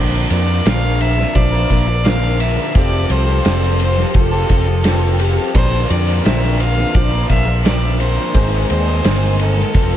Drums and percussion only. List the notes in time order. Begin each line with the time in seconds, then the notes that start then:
0.30 ride
0.65 snare, ride
1.00 ride
1.19 snare
1.35 kick, ride
1.70 kick, ride
2.05 snare, ride
2.40 ride
2.75 kick, ride
3.10 ride
3.45 snare, ride
3.80 ride
3.98 snare
4.14 kick, ride
4.49 kick, ride
4.84 snare, ride
5.19 ride
5.55 kick, ride
5.90 ride
6.25 snare, ride
6.60 ride
6.95 kick, ride
7.29 kick, ride
7.65 snare, ride
8.00 ride
8.34 kick, ride
8.70 ride
9.04 snare, ride
9.39 ride
9.58 snare
9.74 kick, ride